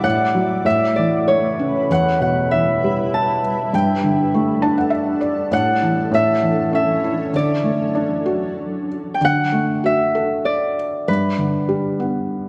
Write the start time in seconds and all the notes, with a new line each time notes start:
Already playing: D5 E5
0.04 A2 A3 F#5
0.35 F#3
0.65 A2 C#3 B4 E5
0.96 E3 D5
1.28 A3 C#5
1.59 C#4
1.87 E2 G3 E4 B4
1.92 F#5
2.21 B2 F#5
2.51 E3 E5
2.84 G3
3.14 A5
3.72 G2 D4 A4 G5
4.04 D3
4.34 A3
4.62 D4 A5
4.78 F#5
4.90 E5
5.21 D5
5.51 A2 E3 F#5
5.82 E3
6.10 A2 C#4
6.14 E5
6.43 E3
6.73 C#4 E5
7.04 E4
7.32 D3 F#3 D4 D5
7.64 A3
7.95 D4
8.26 F#4
9.14 G5
9.21 D3 F#5
9.52 A3
9.84 F#4 E5
10.15 A4
10.45 D5
11.08 G2 B4
11.38 D3
11.69 G3
12.00 B3